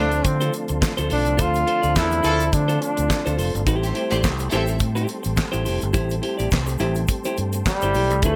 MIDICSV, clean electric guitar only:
0, 0, Header, 1, 3, 480
1, 0, Start_track
1, 0, Tempo, 570342
1, 1169, Time_signature, 4, 2, 24, 8
1, 7033, End_track
2, 0, Start_track
2, 0, Title_t, "Clean electric guitar"
2, 0, Program_c, 0, 27
2, 0, Note_on_c, 0, 65, 95
2, 0, Note_on_c, 0, 69, 90
2, 0, Note_on_c, 0, 72, 111
2, 92, Note_off_c, 0, 72, 0
2, 100, Note_off_c, 0, 69, 0
2, 126, Note_off_c, 0, 65, 0
2, 342, Note_on_c, 0, 72, 85
2, 350, Note_on_c, 0, 69, 82
2, 353, Note_on_c, 0, 65, 69
2, 440, Note_off_c, 0, 65, 0
2, 449, Note_off_c, 0, 69, 0
2, 450, Note_off_c, 0, 72, 0
2, 819, Note_on_c, 0, 72, 86
2, 826, Note_on_c, 0, 69, 80
2, 833, Note_on_c, 0, 65, 72
2, 913, Note_off_c, 0, 65, 0
2, 919, Note_off_c, 0, 69, 0
2, 924, Note_on_c, 0, 65, 70
2, 925, Note_off_c, 0, 72, 0
2, 930, Note_on_c, 0, 69, 78
2, 936, Note_on_c, 0, 72, 71
2, 1042, Note_off_c, 0, 72, 0
2, 1048, Note_off_c, 0, 69, 0
2, 1061, Note_off_c, 0, 65, 0
2, 1156, Note_on_c, 0, 65, 84
2, 1167, Note_on_c, 0, 69, 86
2, 1167, Note_on_c, 0, 72, 95
2, 1327, Note_off_c, 0, 65, 0
2, 1332, Note_off_c, 0, 69, 0
2, 1332, Note_off_c, 0, 72, 0
2, 1402, Note_on_c, 0, 65, 64
2, 1406, Note_on_c, 0, 69, 72
2, 1415, Note_on_c, 0, 72, 72
2, 1527, Note_off_c, 0, 72, 0
2, 1530, Note_off_c, 0, 69, 0
2, 1530, Note_on_c, 0, 74, 57
2, 1534, Note_off_c, 0, 65, 0
2, 1540, Note_on_c, 0, 69, 56
2, 1545, Note_on_c, 0, 65, 53
2, 1631, Note_off_c, 0, 65, 0
2, 1637, Note_off_c, 0, 69, 0
2, 1643, Note_off_c, 0, 74, 0
2, 1876, Note_on_c, 0, 65, 90
2, 1885, Note_on_c, 0, 69, 102
2, 1891, Note_on_c, 0, 72, 106
2, 2011, Note_off_c, 0, 72, 0
2, 2019, Note_off_c, 0, 69, 0
2, 2058, Note_off_c, 0, 65, 0
2, 2256, Note_on_c, 0, 72, 84
2, 2259, Note_on_c, 0, 69, 78
2, 2264, Note_on_c, 0, 65, 80
2, 2359, Note_off_c, 0, 65, 0
2, 2368, Note_off_c, 0, 72, 0
2, 2369, Note_off_c, 0, 69, 0
2, 2741, Note_on_c, 0, 72, 80
2, 2749, Note_on_c, 0, 69, 73
2, 2751, Note_on_c, 0, 65, 78
2, 2833, Note_off_c, 0, 65, 0
2, 2842, Note_off_c, 0, 69, 0
2, 2843, Note_off_c, 0, 72, 0
2, 2843, Note_on_c, 0, 65, 68
2, 2852, Note_on_c, 0, 69, 73
2, 2853, Note_on_c, 0, 72, 76
2, 2975, Note_off_c, 0, 72, 0
2, 2981, Note_off_c, 0, 65, 0
2, 2984, Note_off_c, 0, 69, 0
2, 3087, Note_on_c, 0, 64, 85
2, 3092, Note_on_c, 0, 67, 92
2, 3098, Note_on_c, 0, 72, 82
2, 3264, Note_off_c, 0, 64, 0
2, 3267, Note_off_c, 0, 67, 0
2, 3270, Note_off_c, 0, 72, 0
2, 3321, Note_on_c, 0, 64, 63
2, 3329, Note_on_c, 0, 67, 62
2, 3336, Note_on_c, 0, 72, 72
2, 3457, Note_off_c, 0, 67, 0
2, 3458, Note_off_c, 0, 72, 0
2, 3460, Note_off_c, 0, 64, 0
2, 3462, Note_on_c, 0, 74, 54
2, 3467, Note_on_c, 0, 67, 50
2, 3474, Note_on_c, 0, 64, 52
2, 3552, Note_off_c, 0, 64, 0
2, 3557, Note_off_c, 0, 67, 0
2, 3566, Note_off_c, 0, 74, 0
2, 3806, Note_on_c, 0, 64, 96
2, 3809, Note_on_c, 0, 67, 115
2, 3816, Note_on_c, 0, 72, 110
2, 3929, Note_off_c, 0, 72, 0
2, 3938, Note_off_c, 0, 67, 0
2, 3972, Note_off_c, 0, 64, 0
2, 4168, Note_on_c, 0, 72, 88
2, 4172, Note_on_c, 0, 67, 90
2, 4178, Note_on_c, 0, 64, 69
2, 4266, Note_off_c, 0, 64, 0
2, 4269, Note_off_c, 0, 72, 0
2, 4271, Note_off_c, 0, 67, 0
2, 4644, Note_on_c, 0, 72, 85
2, 4648, Note_on_c, 0, 67, 75
2, 4653, Note_on_c, 0, 64, 66
2, 4737, Note_off_c, 0, 64, 0
2, 4745, Note_off_c, 0, 67, 0
2, 4747, Note_off_c, 0, 72, 0
2, 4747, Note_on_c, 0, 64, 61
2, 4755, Note_on_c, 0, 67, 63
2, 4757, Note_on_c, 0, 72, 79
2, 4874, Note_off_c, 0, 72, 0
2, 4883, Note_off_c, 0, 67, 0
2, 4892, Note_off_c, 0, 64, 0
2, 4993, Note_on_c, 0, 64, 92
2, 4995, Note_on_c, 0, 67, 93
2, 5001, Note_on_c, 0, 72, 98
2, 5164, Note_off_c, 0, 64, 0
2, 5166, Note_off_c, 0, 67, 0
2, 5168, Note_off_c, 0, 72, 0
2, 5234, Note_on_c, 0, 64, 65
2, 5241, Note_on_c, 0, 67, 73
2, 5244, Note_on_c, 0, 72, 67
2, 5362, Note_off_c, 0, 72, 0
2, 5364, Note_off_c, 0, 67, 0
2, 5365, Note_on_c, 0, 74, 66
2, 5370, Note_off_c, 0, 64, 0
2, 5374, Note_on_c, 0, 67, 60
2, 5380, Note_on_c, 0, 64, 47
2, 5464, Note_off_c, 0, 64, 0
2, 5473, Note_off_c, 0, 67, 0
2, 5479, Note_off_c, 0, 74, 0
2, 5722, Note_on_c, 0, 64, 98
2, 5726, Note_on_c, 0, 67, 104
2, 5732, Note_on_c, 0, 72, 110
2, 5848, Note_off_c, 0, 72, 0
2, 5858, Note_off_c, 0, 67, 0
2, 5888, Note_off_c, 0, 64, 0
2, 6105, Note_on_c, 0, 72, 92
2, 6109, Note_on_c, 0, 67, 86
2, 6115, Note_on_c, 0, 64, 69
2, 6199, Note_off_c, 0, 64, 0
2, 6206, Note_off_c, 0, 67, 0
2, 6209, Note_off_c, 0, 72, 0
2, 6588, Note_on_c, 0, 72, 80
2, 6594, Note_on_c, 0, 67, 80
2, 6600, Note_on_c, 0, 64, 70
2, 6681, Note_off_c, 0, 64, 0
2, 6685, Note_off_c, 0, 67, 0
2, 6691, Note_on_c, 0, 64, 68
2, 6693, Note_off_c, 0, 72, 0
2, 6695, Note_on_c, 0, 67, 78
2, 6703, Note_on_c, 0, 72, 79
2, 6823, Note_off_c, 0, 64, 0
2, 6823, Note_off_c, 0, 72, 0
2, 6825, Note_off_c, 0, 67, 0
2, 6943, Note_on_c, 0, 65, 77
2, 6945, Note_on_c, 0, 69, 86
2, 6953, Note_on_c, 0, 72, 88
2, 7033, Note_off_c, 0, 65, 0
2, 7033, Note_off_c, 0, 69, 0
2, 7033, Note_off_c, 0, 72, 0
2, 7033, End_track
3, 0, Start_track
3, 0, Title_t, "Muted clean electric guitar strokes"
3, 102, Note_on_c, 9, 29, 49
3, 186, Note_off_c, 9, 29, 0
3, 207, Note_on_c, 9, 29, 54
3, 291, Note_off_c, 9, 29, 0
3, 450, Note_on_c, 9, 29, 43
3, 534, Note_off_c, 9, 29, 0
3, 584, Note_on_c, 9, 29, 60
3, 668, Note_off_c, 9, 29, 0
3, 682, Note_on_c, 9, 29, 56
3, 767, Note_off_c, 9, 29, 0
3, 1053, Note_on_c, 9, 29, 41
3, 1137, Note_off_c, 9, 29, 0
3, 1641, Note_on_c, 9, 29, 45
3, 1725, Note_off_c, 9, 29, 0
3, 1778, Note_on_c, 9, 29, 58
3, 1862, Note_off_c, 9, 29, 0
3, 2021, Note_on_c, 9, 29, 46
3, 2105, Note_off_c, 9, 29, 0
3, 2127, Note_on_c, 9, 29, 40
3, 2212, Note_off_c, 9, 29, 0
3, 2369, Note_on_c, 9, 29, 36
3, 2454, Note_off_c, 9, 29, 0
3, 2497, Note_on_c, 9, 29, 41
3, 2581, Note_off_c, 9, 29, 0
3, 2596, Note_on_c, 9, 29, 47
3, 2680, Note_off_c, 9, 29, 0
3, 2985, Note_on_c, 9, 29, 43
3, 3069, Note_off_c, 9, 29, 0
3, 3704, Note_on_c, 9, 29, 50
3, 3788, Note_off_c, 9, 29, 0
3, 3939, Note_on_c, 9, 29, 50
3, 4024, Note_off_c, 9, 29, 0
3, 4035, Note_on_c, 9, 29, 42
3, 4119, Note_off_c, 9, 29, 0
3, 4276, Note_on_c, 9, 29, 35
3, 4360, Note_off_c, 9, 29, 0
3, 4403, Note_on_c, 9, 29, 56
3, 4487, Note_off_c, 9, 29, 0
3, 4515, Note_on_c, 9, 29, 42
3, 4599, Note_off_c, 9, 29, 0
3, 4884, Note_on_c, 9, 29, 48
3, 4968, Note_off_c, 9, 29, 0
3, 5474, Note_on_c, 9, 29, 39
3, 5558, Note_off_c, 9, 29, 0
3, 5610, Note_on_c, 9, 29, 53
3, 5695, Note_off_c, 9, 29, 0
3, 5858, Note_on_c, 9, 29, 44
3, 5942, Note_off_c, 9, 29, 0
3, 5966, Note_on_c, 9, 29, 41
3, 6051, Note_off_c, 9, 29, 0
3, 6209, Note_on_c, 9, 29, 49
3, 6294, Note_off_c, 9, 29, 0
3, 6348, Note_on_c, 9, 29, 54
3, 6432, Note_off_c, 9, 29, 0
3, 6457, Note_on_c, 9, 29, 54
3, 6541, Note_off_c, 9, 29, 0
3, 6833, Note_on_c, 9, 29, 57
3, 6917, Note_off_c, 9, 29, 0
3, 7033, End_track
0, 0, End_of_file